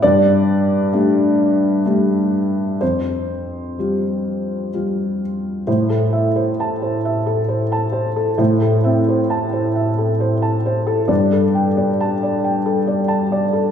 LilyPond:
<<
  \new Staff \with { instrumentName = "Felt piano" } { \time 3/4 \key a \minor \tempo 4 = 66 d''2. | c''2~ c''8 r8 | c''16 a'16 e''16 c''16 a''16 c''16 e''16 a'16 c''16 a''16 c''16 a'16 | c''16 a'16 e''16 c''16 a''16 c''16 e''16 a'16 c''16 a''16 c''16 a'16 |
d''16 a'16 g''16 d''16 a''16 d''16 g''16 a'16 d''16 a''16 d''16 a'16 | }
  \new Staff \with { instrumentName = "Felt piano" } { \time 3/4 \key a \minor g,4 <a d' g'>4 <a d' g'>4 | f,4 <g f' g'>4 <g f' g'>4 | a,2. | a,8 c'8 r2 |
g,2. | }
>>